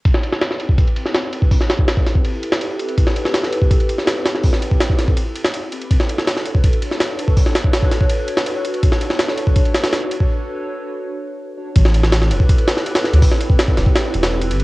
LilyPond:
<<
  \new Staff \with { instrumentName = "Ambient pad" } { \time 4/4 \key a \dorian \tempo 4 = 164 <c' e' g' a' b'>2~ <c' e' g' a' b'>8 r4. | <c' e' g' a' b'>2. r4 | <c' e' g' a' b'>2~ <c' e' g' a' b'>8 r4. | <c' e' g' a' b'>2. r4 |
<d' fis' a' b' cis''>2~ <d' fis' a' b' cis''>8 r4. | <d' fis' a' b' cis''>2. r4 | <d' fis' a' b' cis''>2~ <d' fis' a' b' cis''>8 r4. | <d' fis' a' b' cis''>2. r4 |
<c' e' g' a' b'>2~ <c' e' g' a' b'>8 r4. | <c' e' g' a' b'>2. r4 | }
  \new Staff \with { instrumentName = "Sub bass" } { \clef bass \time 4/4 \key a \dorian r1 | r1 | r1 | r1 |
r1 | r1 | r1 | r1 |
a,,4. e,,16 r2 d,16 | r4. e,,16 r8. e,,4 g,,8 | }
  \new DrumStaff \with { instrumentName = "Drums" } \drummode { \time 4/4 <bd cymr>16 sn16 cymr16 sn16 <cymr sn>16 sn16 cymr16 bd16 <bd cymr>16 cymr16 cymr16 sn16 <cymr sn>8 cymr16 bd16 | <hho bd>16 sn16 <cymr sn>16 bd16 <cymr sn>16 bd16 <cymr sn>16 bd16 cymr8 cymr16 sn16 cymr8 cymr16 cymr16 | <bd cymr>16 sn16 cymr16 sn16 <cymr sn>16 sn16 cymr16 bd16 <bd cymr>16 cymr16 cymr16 sn16 <cymr sn>8 <cymr sn>16 sn16 | <hho bd>16 sn16 cymr16 bd16 <cymr sn>16 bd16 <cymr sn>16 bd16 cymr8 cymr16 sn16 cymr8 cymr16 cymr16 |
<bd cymr>16 sn16 cymr16 sn16 <cymr sn>16 sn16 cymr16 bd16 <bd cymr>16 cymr16 cymr16 sn16 <cymr sn>8 cymr16 bd16 | <hho bd>16 sn16 <cymr sn>16 bd16 <cymr sn>16 bd16 <cymr sn>16 bd16 cymr8 cymr16 sn16 cymr8 cymr16 cymr16 | <bd cymr>16 sn16 cymr16 sn16 <cymr sn>16 sn16 cymr16 bd16 <bd cymr>16 cymr16 <cymr sn>16 <cymr sn>16 <cymr sn>8 cymr16 bd16 | r4 r4 r4 r4 |
<bd cymr>16 sn16 cymr16 sn16 <cymr sn>16 sn16 cymr16 bd16 <bd cymr>16 cymr16 <cymr sn>16 sn16 cymr16 <cymr sn>16 sn16 cymr16 | <hho bd>16 sn16 cymr16 bd16 <cymr sn>16 bd16 <cymr sn>16 bd16 <cymr sn>8 cymr16 <cymr sn>16 r16 cymr16 cymr16 cymr16 | }
>>